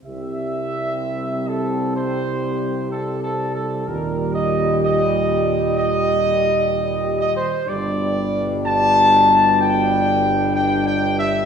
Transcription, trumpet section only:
\new Staff \with { instrumentName = "Trumpet section" } { \time 4/4 \key c \major \tempo 4 = 63 e''4. a'8 c''4 \tuplet 3/2 { a'8 a'8 a'8 } | bes'8 ees''8 ees''4 ees''4~ \tuplet 3/2 { ees''8. ees''16 c''8 } | d''4 a''4 g''4 \tuplet 3/2 { g''8 g''8 e''8 } | }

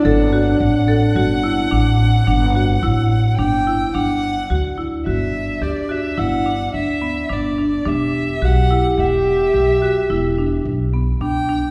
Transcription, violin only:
\new Staff \with { instrumentName = "Violin" } { \time 7/4 \key g \major \tempo 4 = 107 fis''1. g''4 | fis''4. r8 e''4 d''8 e''8 fis''4 e''4 d''4 | e''4 fis''4 e''2. r4 g''4 | }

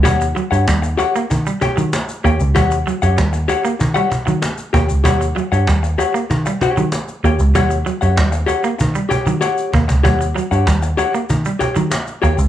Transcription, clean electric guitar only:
\new Staff \with { instrumentName = "Clean electric guitar" } { \clef bass \time 4/4 \key ees \mixolydian \tempo 4 = 96 g16 r16 fis16 r16 g16 r8 bes16 r16 g16 r16 fis16 r8 bes16 r16 | g16 r16 fis16 r16 g16 r8 bes16 r16 g16 r16 fis16 r8 bes16 r16 | g16 r16 fis16 r16 g16 r8 bes16 r16 g16 r16 fis16 r8 bes16 r16 | g16 r16 fis16 r16 g16 r8 bes16 r16 g16 r16 fis16 r8 bes16 r16 |
g16 r16 fis16 r16 g16 r8 bes16 r16 g16 r16 fis16 r8 bes16 r16 | }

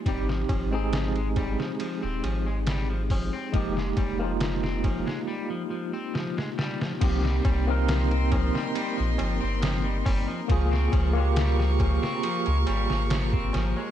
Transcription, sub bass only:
\new Staff \with { instrumentName = "Sub bass" } { \clef bass \time 4/4 \key c \phrygian \tempo 4 = 69 aes,,8 aes,,4~ aes,,16 r8 ees,,16 aes,,4~ aes,,16 r16 | f,,8 f,,4~ f,,16 r2 r16 | c,8 c,4~ c,16 r8 bes,,16 g,,16 g,,8. g,,16 r16 | des,8 des,4~ des,16 r8 des,16 aes,,16 aes,,8. aes,,16 r16 | }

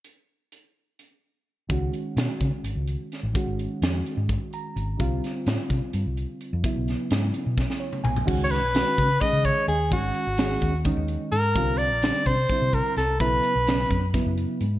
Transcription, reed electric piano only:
<<
  \new Staff \with { instrumentName = "Reed electric piano" } { \time 7/8 \key cis \minor \tempo 4 = 128 r2. r8 | r2. r8 | r2 r8 ais''4 | r2. r8 |
r2 r8 cis''8 gis''8 | r2. r8 | r2. r8 | r2. r8 |
r2. r8 | }
  \new Staff \with { instrumentName = "Reed electric piano" } { \time 7/8 \key cis \minor r2. r8 | <dis gis cis' fis'>2.~ <dis gis cis' fis'>8 | <dis gis cis' fis'>2.~ <dis gis cis' fis'>8 | <d g c' f'>2.~ <d g c' f'>8 |
<cis fis b e'>2.~ <cis fis b e'>8 | <dis gis cis' fis'>8 r8 <dis gis cis' fis'>8 r8 <dis gis cis' gis'>4 r8 | <dis gis cis' fis'>8 r8 <dis gis cis' gis'>8 r8 <dis gis cis' dis'>4 r8 | <d g c' f'>8 r8 <d g c' d'>8 r8 <d g c' e'>4 r8 |
<cis fis b e'>8 r8 <cis fis b cis'>8 r8 <cis fis b e'>4 r8 | }
>>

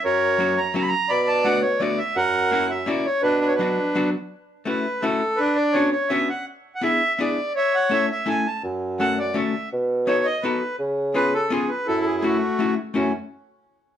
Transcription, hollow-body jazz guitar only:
\new Staff \with { instrumentName = "Hollow-body jazz guitar" } { \time 3/4 \key b \minor \tempo 4 = 168 r4 <fis ais cis' fis'>8 r8 <fis ais cis' fis'>8 r8 | r4 <a b d' fis'>8 r8 <a b d' fis'>8 r8 | r4 <ais cis' e' fis'>8 r8 <ais cis' e' fis'>8 r8 | r4 <fis b d' fis'>8 r8 <fis b d' fis'>8 r8 |
\key fis \minor r4 <a cis' e' fis'>8 r8 <a cis' e' fis'>8 r8 | r4 <b cis' d' fis'>8 r8 <b cis' d' fis'>8 r8 | r4 <b d' e' gis'>8 r8 <b d' e' gis'>8 r8 | r4 <a cis' e' a'>8 r8 <a cis' e' a'>8 r8 |
r4 <a cis' fis' a'>8 r8 <a cis' fis' a'>8 r8 | r4 <b dis' fis' a'>8 r8 <b dis' fis' a'>8 r8 | r4 <b cis' eis' gis'>8 r8 <b cis' eis' gis'>8 r8 | r4 <a cis' e' fis'>8 r8 <a cis' e' fis'>8 r8 |
<a cis' e' fis'>8 r2 r8 | }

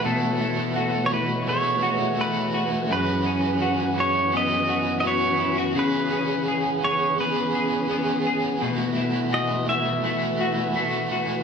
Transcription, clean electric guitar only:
\new Staff \with { instrumentName = "Clean electric guitar" } { \time 4/4 \key b \mixolydian \tempo 4 = 84 <b, a e' fis'>8 e'8 fis'8 e'8 a8 fis'8 a8 fis'8 | fis,8 cis'8 fis'8 cis'8 b8 fis'8 b8 e'16 fis'16 | cis8 cis'8 gis'8 cis'8 b8 gis'8 b8 gis'8 | b,8 e'8 fis'8 e'8 a8 fis'8 a8 fis'8 | }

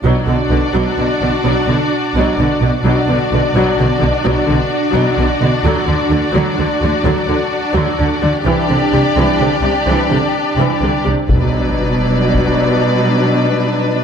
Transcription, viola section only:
\new Staff \with { instrumentName = "Viola section" } { \clef bass \time 12/8 \key b \minor \tempo 4. = 85 << { d'1. | d'1.~ | d'1. | d'1~ d'4. r8 |
d'1. | } \\ { fis8 d8 d8 fis8 d8 d8 fis8 d8 r8 fis8 d8 d8 | fis8 d8 d8 fis8 d8 d8 fis8 d8 r8 fis8 d8 d8 | fis8 d8 d8 fis8 d8 d8 fis8 d8 r8 fis8 d8 d8 | e8 d8 c8 e8 d8 c8 e8 d8 r8 e8 d8 c8 |
fis1. | } >> }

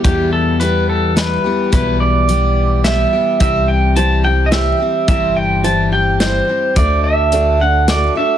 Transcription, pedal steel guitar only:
\new Staff \with { instrumentName = "Pedal steel guitar" } { \time 3/4 \key e \minor \tempo 4 = 107 g'8 a'8 b'8 a'8 b'4 | b'8 d''4. e''4 | e''8 g''8 a''8 g''16. dis''32 e''4 | e''8 g''8 a''8 g''8 c''4 |
d''8 e''4 fis''8 d''8 e''8 | }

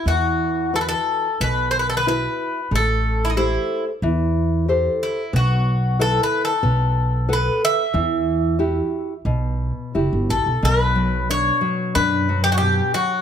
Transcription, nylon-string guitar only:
\new Staff \with { instrumentName = "Nylon-string guitar" } { \time 4/4 \key e \minor \tempo 4 = 92 e4 <e' fis' b'>4 b,4 <e' fis' b'>4 | a4 <g' a' c''>4 e4 <g' a' c''>4 | b4 <e' a' b'>4 b4 <a' b' fis''>4 | e4 <e' fis' g'>4 b,4 <e' fis' g'>4 |
\key b \minor b,8 fis8 d'8 fis8 d'8 fis8 b,8 fis8 | }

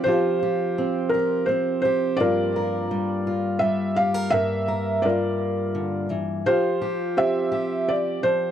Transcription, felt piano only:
\new Staff \with { instrumentName = "Felt piano" } { \time 3/4 \key g \dorian \tempo 4 = 84 << { c''4. bes'8 c''8 c''8 | d''2 e''8 f''8 | e''4 d''4. r8 | c''4 e''4 d''8 c''8 | } \\ { <f' g'>4. r4. | <f' bes'>2 r4 | bes'4 <f' bes'>4. r8 | <f' g'>4 <g' c''>4. r8 | } >> }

